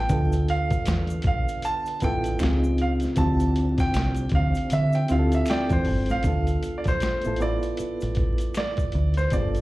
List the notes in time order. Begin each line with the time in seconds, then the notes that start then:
Already playing: B3 D4 F4 B4 G5
0.08 D2 D3 B3 D4 F4, kick, closed hi-hat, shaker
0.13 A4
0.32 closed hi-hat, shaker
0.48 F5, closed hi-hat
0.70 kick, closed hi-hat, shaker
0.85 E2, finger snap, snare, closed hi-hat, shaker
1.07 closed hi-hat, shaker
1.22 B1, kick, closed hi-hat
1.27 F5
1.48 closed hi-hat, shaker
1.62 A5, closed hi-hat, shaker
1.86 closed hi-hat, shaker
2.00 A1 B3 E4 F4 G5, kick, closed hi-hat, shaker
2.05 A4
2.24 closed hi-hat, shaker
2.39 C#2 C#3 C4 D#4 F4 G4, finger snap, snare, closed hi-hat, shaker
2.49 G#4
2.64 shaker
2.78 F5, closed hi-hat
3.00 closed hi-hat, shaker
3.04 snare
3.16 D2 D3 F3 C4 D4 E4 F4 G4 A5, kick, closed hi-hat, shaker
3.20 G4
3.40 closed hi-hat, shaker
3.56 closed hi-hat
3.78 G5, kick, snare, closed hi-hat, shaker
3.94 C2, finger snap, snare, closed hi-hat, shaker
4.15 closed hi-hat, shaker
4.29 D2, kick, closed hi-hat
4.35 F5
4.55 closed hi-hat, shaker
4.70 D3 E5, closed hi-hat, shaker
4.93 G5, closed hi-hat, shaker
5.08 D2 C4 E4 F4 F5, closed hi-hat, shaker
5.12 G4
5.19 A4
5.32 E5, closed hi-hat, shaker
5.46 finger snap, closed hi-hat, shaker
5.50 D5 G5, snare
5.69 E2 C5, kick, closed hi-hat, shaker
5.85 G1, open hi-hat
6.06 A1, closed hi-hat, shaker
6.10 F5, snare
6.23 D2 B3 D4 F4, kick, closed hi-hat, shaker
6.27 A4
6.47 closed hi-hat, shaker
6.63 closed hi-hat, shaker
6.78 D5
6.84 B1 C5, kick, snare, closed hi-hat, shaker
7.00 finger snap, muted fingered electric bass stroke, snare, closed hi-hat, shaker
7.21 B3 E4, closed hi-hat, shaker
7.26 A1 F4 A4
7.36 B3, closed hi-hat
7.41 E4 F4 B4 D5, shaker
7.63 closed hi-hat, shaker
7.77 muted fingered electric bass stroke, closed hi-hat, shaker
8.01 A1, closed hi-hat, shaker
8.15 kick, closed hi-hat
8.38 closed hi-hat, shaker
8.55 D5, finger snap, snare, closed hi-hat, shaker
8.77 kick, closed hi-hat, shaker
8.92 D2, closed hi-hat
9.14 C5, closed hi-hat, shaker
9.18 snare
9.30 G1 B3 D4 D5, kick, closed hi-hat, shaker
9.35 F4 G#4
9.42 A4
9.55 closed hi-hat, shaker